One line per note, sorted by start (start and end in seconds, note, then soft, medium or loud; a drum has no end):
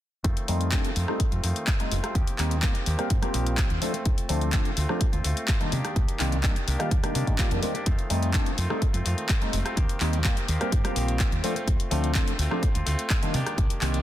0.24 0.32 F2 medium
0.24 0.47 D#3 medium
0.24 0.48 A3 medium
0.24 0.49 C4 medium
0.24 0.49 F4 medium
0.24 kick loud
0.24 closed hi-hat medium
0.37 closed hi-hat medium
0.48 0.77 F2 medium
0.48 0.71 D#3 medium
0.48 0.69 G3 medium
0.48 0.70 A3 medium
0.48 0.71 A3 medium
0.48 0.70 C4 medium
0.48 0.72 C4 medium
0.48 0.70 D#4 loud
0.48 0.72 F4 medium
0.48 open hi-hat loud
0.48 tambourine medium
0.60 closed hi-hat soft
0.60 tambourine soft
0.72 0.94 D#3 medium
0.72 0.89 G3 medium
0.72 0.89 A3 medium
0.72 0.90 C4 medium
0.72 0.96 C4 medium
0.72 0.90 D4 loud
0.72 0.97 F4 medium
0.72 kick loud
0.72 clap loud
0.72 closed hi-hat medium
0.85 closed hi-hat medium
0.95 1.04 F2 medium
0.95 1.08 D#3 medium
0.95 1.09 A3 medium
0.95 1.08 C4 medium
0.95 1.06 F4 medium
0.95 open hi-hat medium
0.95 tambourine medium
1.08 1.25 G3 medium
1.08 1.25 A3 medium
1.08 1.33 A3 medium
1.08 1.25 C4 medium
1.08 1.32 C4 medium
1.08 1.25 D#4 medium
1.08 1.30 F4 medium
1.08 cross-stick medium
1.08 tambourine soft
1.20 muted fingered electric bass stroke soft
1.20 kick loud
1.20 closed hi-hat medium
1.31 1.39 F2 medium
1.31 1.43 A3 medium
1.31 1.43 C4 medium
1.31 1.43 F4 medium
1.31 closed hi-hat soft
1.31 high conga medium
1.43 1.51 F2 medium
1.43 1.66 D#3 medium
1.43 1.67 A3 medium
1.43 1.67 C4 medium
1.43 1.68 F4 medium
1.43 open hi-hat loud
1.56 closed hi-hat soft
1.56 tambourine soft
1.67 1.78 F4 medium
1.67 kick loud
1.67 clap loud
1.67 closed hi-hat medium
1.79 1.96 G3 medium
1.79 1.96 A3 medium
1.79 2.04 A3 medium
1.79 1.97 C4 medium
1.79 2.03 C4 medium
1.79 1.97 D#4 medium
1.79 2.02 F4 medium
1.79 closed hi-hat soft
1.92 1.99 F1 medium
1.92 open hi-hat medium
1.92 tambourine medium
1.92 high conga medium
2.03 2.15 A3 soft
2.03 2.15 C4 medium
2.03 2.15 F4 medium
2.03 cross-stick medium
2.03 closed hi-hat soft
2.03 tambourine medium
2.15 2.23 D#2 medium
2.15 2.37 D#3 medium
2.15 2.38 A#3 medium
2.15 2.39 C4 medium
2.15 2.40 G4 medium
2.15 kick loud
2.15 closed hi-hat medium
2.15 tambourine soft
2.27 closed hi-hat soft
2.38 2.68 D#2 medium
2.38 2.61 D#3 medium
2.38 2.56 G3 medium
2.38 2.56 A#3 medium
2.38 2.62 A#3 medium
2.38 2.56 C4 medium
2.38 2.62 C4 medium
2.38 2.56 D#4 medium
2.38 2.63 G4 medium
2.38 clap medium
2.38 open hi-hat loud
2.51 closed hi-hat soft
2.51 tambourine medium
2.62 2.85 D#3 medium
2.62 2.73 G3 medium
2.62 2.74 A#3 medium
2.62 2.86 A#3 medium
2.62 2.74 C4 medium
2.62 2.86 C4 medium
2.62 2.74 F4 medium
2.62 kick loud
2.62 clap loud
2.62 closed hi-hat medium
2.75 closed hi-hat soft
2.86 2.94 D#2 medium
2.86 2.98 D#3 medium
2.86 2.99 A#3 medium
2.86 2.98 C4 medium
2.86 2.97 G4 medium
2.86 open hi-hat medium
2.86 tambourine medium
2.98 3.09 G3 medium
2.98 3.09 A#3 medium
2.98 3.23 A#3 soft
2.98 3.09 C4 medium
2.98 3.22 C4 medium
2.98 3.21 G4 medium
2.98 3.09 A#4 medium
2.98 cross-stick medium
2.98 closed hi-hat soft
2.98 tambourine soft
3.10 3.18 G2 medium
3.10 kick loud
3.10 closed hi-hat medium
3.22 3.79 G3 medium
3.22 3.79 A#3 medium
3.22 3.33 A#3 soft
3.22 3.79 C4 medium
3.22 3.34 C4 medium
3.22 3.80 F4 medium
3.22 3.34 G4 medium
3.22 cross-stick medium
3.22 closed hi-hat soft
3.22 high conga medium
3.33 3.63 A#1 medium
3.33 3.56 D#3 medium
3.33 3.57 A#3 medium
3.33 3.57 C4 medium
3.33 3.58 G4 medium
3.33 open hi-hat loud
3.33 tambourine medium
3.46 closed hi-hat soft
3.46 tambourine soft
3.57 3.70 D#3 medium
3.57 3.70 A#3 medium
3.57 3.70 C4 medium
3.57 3.68 G4 medium
3.57 kick loud
3.57 clap loud
3.57 closed hi-hat medium
3.70 3.78 D#2 medium
3.70 3.81 A#3 soft
3.70 3.81 C4 medium
3.70 3.81 G4 medium
3.70 closed hi-hat soft
3.81 3.93 F3 medium
3.81 4.27 A3 medium
3.81 3.93 A3 medium
3.81 3.93 C4 medium
3.81 4.30 C4 medium
3.81 3.93 D4 medium
3.81 4.30 F4 medium
3.81 open hi-hat medium
3.81 tambourine medium
3.81 high conga medium
3.94 closed hi-hat soft
3.94 tambourine soft
4.05 4.13 D2 medium
4.05 kick loud
4.05 closed hi-hat medium
4.18 closed hi-hat soft
4.29 4.58 D2 medium
4.29 4.50 F3 medium
4.29 4.51 A3 medium
4.29 4.50 A3 medium
4.29 4.51 C4 medium
4.29 4.53 C4 medium
4.29 4.51 D4 loud
4.29 4.53 F4 medium
4.29 open hi-hat loud
4.41 closed hi-hat soft
4.41 tambourine soft
4.53 4.75 A3 medium
4.53 4.70 C4 medium
4.53 4.77 C4 medium
4.53 4.78 F4 medium
4.53 kick loud
4.53 clap loud
4.53 closed hi-hat medium
4.65 closed hi-hat soft
4.76 4.85 D2 medium
4.76 4.89 A3 medium
4.76 4.90 C4 medium
4.76 4.87 F4 medium
4.76 open hi-hat medium
4.76 tambourine medium
4.89 5.06 F3 medium
4.89 5.06 A3 medium
4.89 5.06 C4 medium
4.89 5.14 C4 soft
4.89 5.06 D4 medium
4.89 5.11 F4 medium
4.89 cross-stick medium
4.89 tambourine soft
5.01 muted fingered electric bass stroke soft
5.01 kick loud
5.01 closed hi-hat medium
5.13 5.20 D2 medium
5.13 5.24 C4 medium
5.13 5.24 F4 medium
5.13 closed hi-hat soft
5.13 high conga medium
5.24 5.32 D2 medium
5.24 5.47 A3 medium
5.24 5.48 C4 medium
5.24 5.49 F4 medium
5.24 open hi-hat loud
5.24 tambourine medium
5.37 closed hi-hat soft
5.37 tambourine soft
5.48 5.61 C4 medium
5.48 5.59 F4 loud
5.48 kick loud
5.48 clap loud
5.48 closed hi-hat medium
5.60 5.77 D#3 medium
5.60 5.77 G3 medium
5.60 5.77 A#3 medium
5.60 5.73 C4 soft
5.60 5.78 D4 medium
5.60 5.72 F4 medium
5.60 closed hi-hat soft
5.72 5.80 C3 medium
5.72 6.19 D#3 medium
5.72 6.19 A#3 medium
5.72 6.20 D4 medium
5.72 6.21 G4 medium
5.72 open hi-hat medium
5.72 tambourine medium
5.72 high conga medium
5.84 cross-stick medium
5.84 closed hi-hat soft
5.84 tambourine soft
5.96 6.04 C2 loud
5.96 kick loud
5.96 closed hi-hat medium
6.08 closed hi-hat soft
6.19 6.49 C2 medium
6.19 6.42 D#3 medium
6.19 6.37 D#3 medium
6.19 6.37 G3 medium
6.19 6.37 A#3 medium
6.19 6.43 A#3 medium
6.19 6.37 C4 medium
6.19 6.43 D4 medium
6.19 6.44 G4 medium
6.19 clap medium
6.19 open hi-hat loud
6.32 closed hi-hat soft
6.32 tambourine soft
6.43 6.66 D#3 medium
6.43 6.54 D#3 medium
6.43 6.55 G3 medium
6.43 6.67 A#3 medium
6.43 6.55 A#3 medium
6.43 6.55 D4 medium
6.43 6.68 D4 medium
6.43 6.68 G4 loud
6.43 kick loud
6.43 clap loud
6.43 closed hi-hat medium
6.56 closed hi-hat soft
6.67 6.75 C2 medium
6.67 6.79 D#3 medium
6.67 6.80 A#3 medium
6.67 6.79 D4 medium
6.67 6.78 G4 medium
6.67 open hi-hat medium
6.67 tambourine medium
6.79 6.90 D#3 medium
6.79 6.90 G3 medium
6.79 6.90 A#3 medium
6.79 7.04 A#3 medium
6.79 7.03 D4 medium
6.79 6.90 F4 medium
6.79 7.02 G4 medium
6.79 cross-stick medium
6.79 closed hi-hat soft
6.79 tambourine soft
6.91 6.99 D#2 medium
6.91 kick loud
6.91 closed hi-hat medium
7.03 7.25 D#3 medium
7.03 7.25 G3 medium
7.03 7.25 A#3 medium
7.03 7.14 A#3 medium
7.03 7.25 D4 medium
7.03 7.15 D4 medium
7.03 7.15 G4 medium
7.03 cross-stick medium
7.03 closed hi-hat soft
7.03 high conga medium
7.14 7.23 C3 medium
7.14 7.37 D#3 medium
7.14 7.38 A#3 medium
7.14 7.39 D4 medium
7.14 7.39 G4 medium
7.14 open hi-hat loud
7.14 tambourine medium
7.27 7.35 A2 medium
7.27 7.36 D#3 medium
7.27 7.36 G3 medium
7.27 7.36 A#3 medium
7.27 7.36 D4 medium
7.27 kick medium
7.27 closed hi-hat soft
7.27 tambourine soft
7.38 7.49 D#3 medium
7.38 7.51 D#3 medium
7.38 7.49 G3 medium
7.38 7.50 A#3 medium
7.38 7.51 A#3 medium
7.38 7.51 D4 medium
7.38 7.50 F4 medium
7.38 7.49 G4 medium
7.38 kick loud
7.38 clap loud
7.38 closed hi-hat medium
7.51 7.58 F2 medium
7.51 7.60 D#3 medium
7.51 7.60 G3 medium
7.51 7.60 A#3 medium
7.51 7.76 A#3 soft
7.51 7.60 D4 medium
7.51 7.75 D4 medium
7.51 7.73 G4 medium
7.51 closed hi-hat soft
7.62 7.73 D#3 medium
7.62 7.74 G3 medium
7.62 7.74 A#3 medium
7.62 7.74 C4 medium
7.62 open hi-hat medium
7.62 tambourine medium
7.62 high conga medium
7.74 7.86 A#3 soft
7.74 7.87 D4 medium
7.74 7.86 G4 medium
7.74 closed hi-hat soft
7.74 tambourine soft
7.86 7.94 F2 medium
7.86 8.08 D#3 medium
7.86 8.09 A3 medium
7.86 8.10 C4 medium
7.86 8.11 F4 medium
7.86 kick loud
7.86 closed hi-hat medium
7.86 tambourine soft
7.99 closed hi-hat soft
8.10 8.39 F2 medium
8.10 8.32 D#3 medium
8.10 8.31 G3 medium
8.10 8.31 A3 medium
8.10 8.33 A3 medium
8.10 8.32 C4 medium
8.10 8.34 C4 medium
8.10 8.32 D#4 loud
8.10 8.34 F4 medium
8.10 open hi-hat loud
8.10 tambourine medium
8.23 closed hi-hat soft
8.23 tambourine soft
8.34 8.56 D#3 medium
8.34 8.51 G3 medium
8.34 8.51 A3 medium
8.34 8.57 A3 medium
8.34 8.58 C4 medium
8.34 8.51 D4 loud
8.34 8.59 F4 medium
8.34 kick loud
8.34 clap loud
8.34 closed hi-hat medium
8.46 closed hi-hat soft
8.57 8.66 F2 medium
8.57 8.70 D#3 medium
8.57 8.70 A3 medium
8.57 8.70 C4 medium
8.57 8.68 F4 medium
8.57 open hi-hat medium
8.57 tambourine medium
8.69 8.87 G3 medium
8.69 8.87 A3 medium
8.69 8.95 A3 medium
8.69 8.87 C4 medium
8.69 8.93 C4 medium
8.69 8.87 D#4 medium
8.69 8.92 F4 medium
8.69 cross-stick medium
8.69 tambourine soft
8.82 muted fingered electric bass stroke soft
8.82 kick loud
8.82 closed hi-hat medium
8.82 tambourine soft
8.93 9.01 F2 medium
8.93 9.05 A3 medium
8.93 9.05 C4 medium
8.93 9.05 F4 medium
8.93 closed hi-hat soft
8.93 high conga medium
9.05 9.13 F2 medium
9.05 9.28 D#3 medium
9.05 9.28 A3 medium
9.05 9.29 C4 medium
9.05 9.29 F4 medium
9.05 open hi-hat loud
9.05 tambourine medium
9.18 closed hi-hat soft
9.18 tambourine soft
9.29 9.41 D#3 medium
9.29 9.42 A3 medium
9.29 kick loud
9.29 clap loud
9.29 closed hi-hat medium
9.41 9.58 G3 medium
9.41 9.58 A3 medium
9.41 9.66 A3 soft
9.41 9.59 C4 medium
9.41 9.65 C4 medium
9.41 9.59 D#4 medium
9.41 9.64 F4 medium
9.41 closed hi-hat soft
9.53 9.61 F1 medium
9.53 open hi-hat medium
9.53 tambourine medium
9.53 high conga medium
9.65 9.77 A3 soft
9.65 9.77 C4 medium
9.65 9.77 F4 medium
9.65 cross-stick medium
9.65 closed hi-hat soft
9.65 tambourine soft
9.77 9.85 D#2 loud
9.77 9.99 D#3 medium
9.77 10.00 A#3 medium
9.77 10.01 C4 medium
9.77 10.02 G4 medium
9.77 kick loud
9.77 closed hi-hat medium
9.89 closed hi-hat soft
10.00 10.30 D#2 medium
10.00 10.23 D#3 medium
10.00 10.18 G3 medium
10.00 10.18 A#3 medium
10.00 10.24 A#3 medium
10.00 10.18 C4 medium
10.00 10.24 C4 medium
10.00 10.18 D#4 medium
10.00 10.25 G4 medium
10.00 clap medium
10.00 open hi-hat medium
10.00 tambourine medium
10.13 closed hi-hat soft
10.13 tambourine soft
10.24 10.46 D#3 medium
10.24 10.36 G3 medium
10.24 10.36 A#3 medium
10.24 10.47 A#3 medium
10.24 10.36 C4 medium
10.24 10.48 C4 medium
10.24 10.36 F4 medium
10.24 10.49 G4 medium
10.24 kick loud
10.24 clap loud
10.24 closed hi-hat medium
10.37 closed hi-hat soft
10.48 10.56 D#2 medium
10.48 10.60 D#3 medium
10.48 10.61 A#3 medium
10.48 10.60 C4 medium
10.48 10.59 G4 medium
10.48 open hi-hat medium
10.48 tambourine medium
10.60 10.71 G3 medium
10.60 10.71 A#3 medium
10.60 10.85 A#3 soft
10.60 10.71 C4 medium
10.60 10.84 C4 medium
10.60 10.83 G4 medium
10.60 10.71 A#4 medium
10.60 cross-stick medium
10.60 closed hi-hat soft
10.60 tambourine soft
10.72 10.80 G2 medium
10.72 kick loud
10.72 closed hi-hat medium
10.72 tambourine soft
10.84 11.41 G3 medium
10.84 11.41 A#3 medium
10.84 10.95 A#3 soft
10.84 11.41 C4 medium
10.84 10.96 C4 medium
10.84 11.42 F4 medium
10.84 10.96 G4 medium
10.84 cross-stick medium
10.84 closed hi-hat soft
10.84 high conga medium
10.95 11.25 A#1 medium
10.95 11.18 D#3 medium
10.95 11.19 A#3 medium
10.95 11.19 C4 medium
10.95 11.20 G4 medium
10.95 open hi-hat loud
10.95 tambourine medium
11.08 closed hi-hat soft
11.08 tambourine soft
11.20 11.32 A#3 medium
11.20 11.32 C4 medium
11.20 11.30 G4 medium
11.20 kick loud
11.20 clap loud
11.20 closed hi-hat medium
11.31 11.39 D#2 medium
11.31 11.43 A#3 soft
11.31 11.43 C4 soft
11.31 11.43 G4 medium
11.31 closed hi-hat soft
11.43 11.54 F3 medium
11.43 11.89 A3 medium
11.43 11.55 A3 medium
11.43 11.55 C4 medium
11.43 11.92 C4 medium
11.43 11.55 D4 medium
11.43 11.92 F4 medium
11.43 open hi-hat medium
11.43 tambourine medium
11.43 high conga medium
11.56 closed hi-hat soft
11.56 tambourine soft
11.68 11.75 D2 medium
11.68 kick loud
11.68 closed hi-hat medium
11.80 closed hi-hat soft
11.91 12.20 D2 medium
11.91 12.12 F3 medium
11.91 12.14 A3 medium
11.91 12.12 A3 medium
11.91 12.12 C4 medium
11.91 12.15 C4 medium
11.91 12.13 D4 loud
11.91 12.15 F4 medium
11.91 open hi-hat medium
11.91 tambourine medium
12.04 closed hi-hat soft
12.04 tambourine medium
12.15 12.32 F3 medium
12.15 12.39 C4 medium
12.15 12.40 F4 medium
12.15 kick loud
12.15 clap loud
12.15 closed hi-hat medium
12.28 closed hi-hat medium
12.38 12.47 D2 medium
12.38 12.51 A3 medium
12.38 12.52 C4 medium
12.38 12.49 F4 medium
12.38 open hi-hat medium
12.38 tambourine medium
12.51 12.68 F3 medium
12.51 12.68 A3 medium
12.51 12.68 C4 medium
12.51 12.76 C4 medium
12.51 12.68 D4 medium
12.51 12.73 F4 medium
12.51 cross-stick medium
12.51 tambourine soft
12.63 muted fingered electric bass stroke soft
12.63 kick loud
12.63 closed hi-hat medium
12.63 tambourine soft
12.74 12.82 D2 medium
12.74 12.86 C4 medium
12.74 12.86 F4 medium
12.74 closed hi-hat medium
12.74 high conga medium
12.86 12.94 D2 medium
12.86 13.09 A3 medium
12.86 13.10 C4 medium
12.86 13.11 F4 medium
12.86 open hi-hat medium
12.86 tambourine loud
12.99 closed hi-hat soft
12.99 tambourine soft
13.10 13.22 A3 medium
13.10 13.23 C4 medium
13.10 13.21 F4 medium
13.10 kick loud
13.10 clap loud
13.10 closed hi-hat medium
13.22 13.39 D#3 medium
13.22 13.39 G3 medium
13.22 13.39 A#3 medium
13.22 13.35 C4 soft
13.22 13.39 D4 medium
13.22 13.34 F4 medium
13.22 closed hi-hat soft
13.34 13.42 C3 medium
13.34 13.81 D#3 medium
13.34 13.81 A#3 medium
13.34 13.82 D4 medium
13.34 13.83 G4 medium
13.34 open hi-hat medium
13.34 tambourine loud
13.34 high conga medium
13.46 cross-stick medium
13.46 closed hi-hat soft
13.46 tambourine soft
13.57 13.66 C2 loud
13.57 kick loud
13.57 closed hi-hat medium
13.57 tambourine soft
13.70 closed hi-hat medium
13.81 14.02 C2 medium
13.81 14.02 D#3 medium
13.81 13.99 D#3 medium
13.81 13.99 G3 medium
13.81 13.99 A#3 medium
13.81 14.02 A#3 medium
13.81 13.99 C4 medium
13.81 14.02 D4 medium
13.81 14.02 G4 medium
13.81 clap medium
13.81 open hi-hat medium
13.81 tambourine medium
13.94 closed hi-hat soft
13.94 tambourine medium